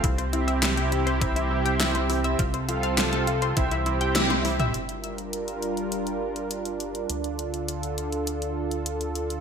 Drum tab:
HH |xxxxxxxxxx-xxxox|xxxxxxxxxxxxxxox|xxxxxxxxxx-xxxxx|xxxxxxxxxx-xxxxx|
CP |----x-------x---|----x-------x---|----------------|----------------|
SD |----o-------o---|----o-------o---|----------------|----------------|
T1 |----------------|------------oo--|----------------|----------------|
T2 |----------------|---------------o|----------------|----------------|
BD |o-------o-------|o-------o-------|----------------|----------------|